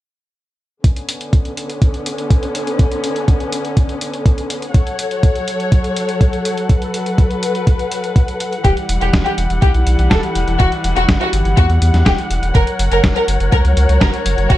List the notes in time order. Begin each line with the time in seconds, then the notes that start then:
0.84 D3 B3 C#4, kick, closed hi-hat
0.96 closed hi-hat
1.09 closed hi-hat
1.21 closed hi-hat
1.33 kick, closed hi-hat
1.45 closed hi-hat
1.57 closed hi-hat
1.70 closed hi-hat
1.82 kick, closed hi-hat
1.94 closed hi-hat
2.06 closed hi-hat
2.18 closed hi-hat
2.30 kick, closed hi-hat
2.43 closed hi-hat
2.55 closed hi-hat
2.67 closed hi-hat
2.79 kick, closed hi-hat
2.92 closed hi-hat
3.04 closed hi-hat
3.16 closed hi-hat
3.28 kick, closed hi-hat
3.40 closed hi-hat
3.53 closed hi-hat
3.65 closed hi-hat
3.77 kick, closed hi-hat
3.89 closed hi-hat
4.01 closed hi-hat
4.14 closed hi-hat
4.26 kick, closed hi-hat
4.38 closed hi-hat
4.50 closed hi-hat
4.62 closed hi-hat
4.74 F#3 A4 C#5 F#5, kick, closed hi-hat
4.87 closed hi-hat
4.99 closed hi-hat
5.11 closed hi-hat
5.23 kick, closed hi-hat
5.35 closed hi-hat
5.48 closed hi-hat
5.60 closed hi-hat
5.72 kick, closed hi-hat
5.84 closed hi-hat
5.96 closed hi-hat
6.09 closed hi-hat
6.21 kick, closed hi-hat
6.33 closed hi-hat
6.45 closed hi-hat
6.58 closed hi-hat
6.70 B4, kick, closed hi-hat
6.82 closed hi-hat
6.94 closed hi-hat
7.06 closed hi-hat
7.18 kick, closed hi-hat
7.31 closed hi-hat
7.43 closed hi-hat
7.55 closed hi-hat
7.67 kick, closed hi-hat
7.79 closed hi-hat
7.92 closed hi-hat
8.04 closed hi-hat
8.16 kick, closed hi-hat
8.28 closed hi-hat
8.40 closed hi-hat
8.53 closed hi-hat
8.65 E1 E3 G3 E4 G4, kick, closed hi-hat
8.77 closed hi-hat
8.89 E1, closed hi-hat
9.01 E1 G4, closed hi-hat
9.13 E1, kick, snare, closed hi-hat
9.25 G4, closed hi-hat
9.38 E1, closed hi-hat
9.50 E1, closed hi-hat
9.62 B1 G4, kick, closed hi-hat
9.74 B1, closed hi-hat
9.87 B1, closed hi-hat
9.99 B1, closed hi-hat
10.11 E1 A4, kick, snare, closed hi-hat
10.23 closed hi-hat
10.35 E1, closed hi-hat
10.48 E1, closed hi-hat
10.60 E1 F#4, kick, closed hi-hat
10.72 closed hi-hat
10.84 E1, closed hi-hat
10.96 E1 F#4, closed hi-hat
11.09 G1, kick, snare, closed hi-hat
11.21 F#4, closed hi-hat
11.33 G1, closed hi-hat
11.45 G1, closed hi-hat
11.57 E2 F#4, kick, closed hi-hat
11.69 E2, closed hi-hat
11.82 E2, closed hi-hat
11.94 E2, snare, closed hi-hat
12.06 E1 G4, kick, snare, closed hi-hat
12.18 closed hi-hat
12.30 E1, closed hi-hat
12.43 E1, closed hi-hat
12.55 F#1 F#3 A#4 C#5, kick, closed hi-hat
12.67 closed hi-hat
12.79 F#1, closed hi-hat
12.91 F#1 A#4, closed hi-hat
13.04 F#1, kick, snare, closed hi-hat
13.16 A#4, closed hi-hat
13.28 F#1, closed hi-hat
13.40 F#1, closed hi-hat
13.52 C#2 A#4, kick, closed hi-hat
13.65 C#2, closed hi-hat
13.77 C#2, closed hi-hat
13.89 C#2, closed hi-hat
14.01 F#1 A#4, kick, snare, closed hi-hat
14.14 closed hi-hat
14.26 F#1, closed hi-hat
14.38 F#1, closed hi-hat
14.50 F#1 F#4, kick, closed hi-hat